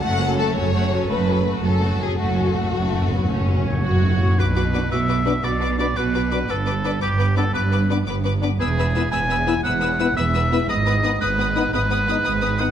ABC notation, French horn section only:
X:1
M:12/8
L:1/16
Q:3/8=114
K:F#m
V:1 name="French horn section"
z24 | z24 | [K:Bm] z4 [B,D] z4 z [B,D] z4 z [B,D] z4 z [B,D] z | z4 [B,D] z4 z [B,D] z4 z [B,D] z4 z [B,D] z |
z4 [B,E] z4 z [B,E] z4 z [B,E] z4 z [B,E] z | z4 [B,^D] z4 z [B,D] z4 z [B,D] z4 z [B,D] z |]